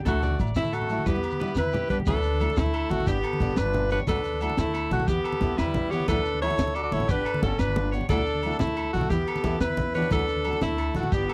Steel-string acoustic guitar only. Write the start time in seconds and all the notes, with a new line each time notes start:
0.05 F#3 A3 E4
0.39 F#3 A3, muted steel-string acoustic guitar stroke
0.89 F#3 A3 E4
1.07 G3 B3 E4
1.40 G3 B3 E4
1.89 G3 B3
2.06 F#3 A3 E4
2.40 F#3 A3 E4
2.90 F#3 A3 E4
3.07 B3 D4 G4
3.40 B3 D4 G4
3.91 B3 D4 G4
4.07 F#3 A3 F#4, muted steel-string acoustic guitar stroke
4.41 F#3 A3 E4 F#4
4.91 F#3 A3 E4 F#4
5.08 E3 B3 G4, muted steel-string acoustic guitar stroke
5.42 B3 E4 G4, muted steel-string acoustic guitar stroke
5.91 E3 B3 E4 G4
6.09 E3 A3 E4 F#4
6.42 E3 A3 E4 F#4
6.93 E3 A3 E4 F#4
7.10 B3 D4 G4
7.42 B3 D4 G4
7.93 B3 D4 G4
8.10 F#3 A3 E4 F#4
8.44 F#3 A3 E4 F#4
8.94 F#3 A3 E4 F#4
9.11 E3 E4 G4, muted steel-string acoustic guitar stroke
9.44 E3 B3 E4 G4
9.95 E3 B3 E4 G4
10.12 F#3 A3 E4 F#4
10.46 F#3 A3 E4 F#4
10.96 F#3 A3 E4 F#4
11.12 B3 D4 G4